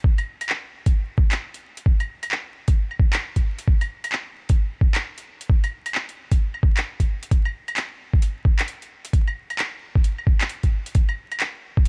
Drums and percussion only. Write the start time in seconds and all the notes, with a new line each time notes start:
0.04 kick
0.18 closed hi-hat, claves
0.41 closed hi-hat, claves
0.49 clap
0.86 kick, closed hi-hat
1.18 kick
1.32 clap, closed hi-hat
1.54 closed hi-hat
1.77 closed hi-hat
1.86 kick
2.00 closed hi-hat, claves
2.23 closed hi-hat, claves
2.31 clap
2.68 kick, closed hi-hat
2.91 claves
3.00 kick
3.13 clap, closed hi-hat
3.36 kick, closed hi-hat
3.58 closed hi-hat
3.68 kick
3.81 closed hi-hat, claves
4.04 closed hi-hat, claves
4.12 clap
4.49 kick, closed hi-hat
4.81 kick
4.95 clap, closed hi-hat
5.18 closed hi-hat
5.41 closed hi-hat
5.49 kick
5.64 closed hi-hat, claves
5.86 closed hi-hat, claves
5.95 clap
6.09 closed hi-hat
6.32 kick, closed hi-hat
6.54 claves
6.63 kick
6.77 clap, closed hi-hat
7.00 kick, closed hi-hat
7.23 closed hi-hat
7.31 kick, closed hi-hat
7.45 claves
7.68 closed hi-hat, claves
7.77 clap, closed hi-hat
8.14 kick
8.22 closed hi-hat
8.45 kick
8.59 clap, closed hi-hat
8.68 closed hi-hat
8.82 closed hi-hat
9.05 closed hi-hat
9.13 kick, closed hi-hat
9.27 claves
9.50 closed hi-hat, claves
9.59 clap, closed hi-hat
9.95 kick
10.04 closed hi-hat
10.18 claves
10.27 kick
10.41 clap, closed hi-hat
10.49 closed hi-hat
10.63 kick, closed hi-hat
10.86 closed hi-hat
10.95 kick, closed hi-hat
11.09 claves
11.32 closed hi-hat, claves
11.40 clap, closed hi-hat
11.77 kick